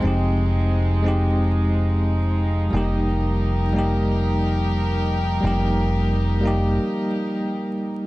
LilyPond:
<<
  \new Staff \with { instrumentName = "String section" } { \time 4/4 \key ees \mixolydian \tempo 4 = 89 << { <aes c' ees'>1 | <g' bes'>1~ | <g' bes'>1 | } \\ { f1~ | f1~ | f1 | } >> }
  \new Staff \with { instrumentName = "Tine electric piano" } { \time 4/4 \key ees \mixolydian <aes c' ees' g'>4. <aes c' ees' g'>2~ <aes c' ees' g'>8 | <g bes ees' g'>4. <g bes ees' g'>2~ <g bes ees' g'>8 | <g bes ees' g'>4. <g bes ees' g'>8 r2 | }
  \new Staff \with { instrumentName = "Fingered electric bass" } { \clef bass \time 4/4 \key ees \mixolydian f,,1 | f,,1 | f,,2 r2 | }
>>